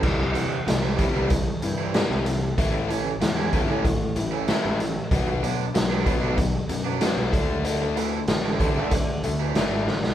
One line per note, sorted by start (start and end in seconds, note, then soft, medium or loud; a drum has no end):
0.03 0.32 C2 medium
0.03 0.33 C3 medium
0.03 0.33 E3 medium
0.03 0.34 G3 medium
0.03 kick loud
0.03 crash medium
0.20 muted overdriven electric guitar stroke soft
0.34 0.64 C3 medium
0.34 0.55 E3 medium
0.34 0.64 E3 medium
0.34 0.55 G3 medium
0.34 0.56 C4 medium
0.34 0.56 E4 medium
0.34 closed hi-hat medium
0.66 0.95 C2 medium
0.66 0.96 C3 medium
0.66 0.96 E3 medium
0.66 muted overdriven electric guitar stroke soft
0.66 snare loud
0.66 closed hi-hat medium
0.82 1.04 E3 medium
0.82 1.04 G3 medium
0.82 1.03 C4 medium
0.82 1.03 E4 medium
0.98 1.28 C3 medium
0.98 1.29 E3 medium
0.98 1.29 G3 loud
0.98 kick medium
0.98 closed hi-hat medium
1.14 1.43 C2 medium
1.14 1.29 E3 medium
1.14 1.29 G3 medium
1.14 1.29 C4 medium
1.14 1.30 E4 medium
1.30 1.59 C3 medium
1.30 1.59 E3 medium
1.30 muted overdriven electric guitar stroke soft
1.30 kick loud
1.30 closed hi-hat medium
1.62 2.05 G2 medium
1.62 1.91 C3 medium
1.62 1.92 E3 medium
1.62 closed hi-hat medium
1.78 1.99 E3 medium
1.78 1.99 G3 medium
1.78 1.99 C4 medium
1.78 1.99 E4 medium
1.94 2.24 C3 medium
1.94 2.24 E3 medium
1.94 2.25 G3 medium
1.94 snare loud
1.94 closed hi-hat medium
2.10 2.52 C2 medium
2.10 muted overdriven electric guitar stroke soft
2.26 2.54 C3 medium
2.26 2.55 E3 medium
2.26 closed hi-hat medium
2.58 3.14 A1 medium
2.58 2.87 A2 medium
2.58 2.88 E3 medium
2.58 2.88 A3 loud
2.58 kick loud
2.58 closed hi-hat medium
2.73 muted overdriven electric guitar stroke soft
2.89 3.18 A2 medium
2.89 3.10 E3 medium
2.89 3.18 E3 medium
2.89 3.10 A3 medium
2.89 3.10 C#4 medium
2.89 3.10 E4 medium
2.89 closed hi-hat medium
3.21 3.69 E2 medium
3.21 3.50 A2 medium
3.21 3.50 E3 medium
3.21 muted overdriven electric guitar stroke soft
3.21 snare loud
3.21 closed hi-hat medium
3.36 3.58 E3 medium
3.36 3.58 A3 medium
3.36 3.58 C#4 medium
3.36 3.57 E4 medium
3.53 3.83 A2 medium
3.53 3.83 E3 medium
3.53 3.83 A3 medium
3.53 kick medium
3.53 closed hi-hat medium
3.68 4.19 A2 medium
3.68 3.84 E3 medium
3.68 3.84 A3 medium
3.68 3.84 C#4 medium
3.68 3.84 E4 medium
3.85 4.13 A2 medium
3.85 4.13 E3 medium
3.85 muted overdriven electric guitar stroke soft
3.85 kick loud
3.85 closed hi-hat medium
4.16 4.45 A1 medium
4.16 4.45 A2 medium
4.16 4.45 E3 medium
4.16 closed hi-hat medium
4.31 4.53 E3 medium
4.31 4.53 A3 medium
4.31 4.53 C#4 medium
4.31 4.52 E4 medium
4.48 4.78 A2 medium
4.48 4.78 E3 medium
4.48 4.78 A3 medium
4.48 snare loud
4.48 closed hi-hat medium
4.64 4.93 A1 medium
4.64 muted overdriven electric guitar stroke soft
4.80 5.08 A2 medium
4.80 5.09 E3 medium
4.80 closed hi-hat medium
5.11 5.39 B1 medium
5.11 5.41 B2 medium
5.11 5.42 F#3 medium
5.11 5.42 B3 medium
5.11 kick loud
5.11 closed hi-hat medium
5.27 muted overdriven electric guitar stroke soft
5.43 5.64 B2 medium
5.43 5.72 B2 soft
5.43 5.72 F#3 medium
5.43 5.64 F#3 medium
5.43 5.64 B3 medium
5.43 5.64 D4 loud
5.43 closed hi-hat medium
5.74 6.03 B1 medium
5.74 6.03 B2 medium
5.74 6.03 F#3 medium
5.74 muted overdriven electric guitar stroke soft
5.74 snare loud
5.74 closed hi-hat medium
5.90 6.11 B2 medium
5.90 6.11 F#3 medium
5.90 6.11 B3 medium
5.90 6.11 D4 medium
6.06 6.36 B2 medium
6.06 6.36 F#3 medium
6.06 6.36 B3 loud
6.06 kick medium
6.06 closed hi-hat medium
6.21 6.51 B1 medium
6.21 6.35 B2 medium
6.21 6.36 F#3 medium
6.21 6.36 B3 medium
6.21 6.36 D4 medium
6.37 6.66 B2 medium
6.37 6.66 F#3 medium
6.37 muted overdriven electric guitar stroke soft
6.37 kick loud
6.37 closed hi-hat medium
6.69 7.13 F#2 medium
6.69 6.98 B2 medium
6.69 6.98 F#3 medium
6.69 closed hi-hat medium
6.85 7.06 B2 medium
6.85 7.06 F#3 medium
6.85 7.06 B3 medium
6.85 7.06 D4 medium
7.01 7.31 B2 medium
7.01 7.31 F#3 medium
7.01 7.32 B3 medium
7.01 snare loud
7.01 closed hi-hat medium
7.17 7.31 B1 medium
7.17 muted overdriven electric guitar stroke soft
7.33 8.19 D2 medium
7.33 7.63 D3 medium
7.33 7.63 A3 medium
7.33 7.64 D4 medium
7.33 kick loud
7.33 closed hi-hat medium
7.65 7.95 D3 medium
7.65 7.95 A3 medium
7.65 7.95 D4 medium
7.65 closed hi-hat medium
7.81 muted overdriven electric guitar stroke soft
7.96 8.17 D3 medium
7.96 8.25 D3 medium
7.96 8.17 E3 medium
7.96 8.18 A3 medium
7.96 8.26 A3 medium
7.96 8.18 E4 medium
7.96 closed hi-hat medium
8.28 8.77 A1 medium
8.28 8.57 D3 medium
8.28 8.57 A3 medium
8.28 muted overdriven electric guitar stroke soft
8.28 snare loud
8.28 closed hi-hat medium
8.45 8.66 D3 medium
8.45 8.66 E3 medium
8.45 8.66 A3 medium
8.45 8.65 E4 medium
8.60 8.90 D3 medium
8.60 8.91 A3 medium
8.60 8.91 D4 medium
8.60 kick medium
8.60 closed hi-hat medium
8.76 9.25 D3 medium
8.76 8.92 D3 medium
8.76 8.92 E3 medium
8.76 8.92 A3 medium
8.76 8.92 E4 medium
8.91 9.21 D3 medium
8.91 9.21 A3 medium
8.91 muted overdriven electric guitar stroke soft
8.91 kick loud
8.91 closed hi-hat medium
9.23 9.52 D2 medium
9.23 9.53 D3 medium
9.23 9.53 A3 medium
9.23 closed hi-hat medium
9.40 9.61 D3 medium
9.40 9.61 E3 medium
9.40 9.60 A3 medium
9.40 9.60 E4 medium
9.55 9.69 F#1 medium
9.55 9.86 D3 medium
9.55 9.86 A3 medium
9.55 9.86 D4 medium
9.55 snare loud
9.55 closed hi-hat medium
9.70 9.85 G#1 medium
9.70 muted overdriven electric guitar stroke soft
9.86 10.01 A1 medium
9.86 10.14 D3 medium
9.86 10.14 A3 medium
9.86 snare medium
10.02 10.14 B1 medium
10.02 snare medium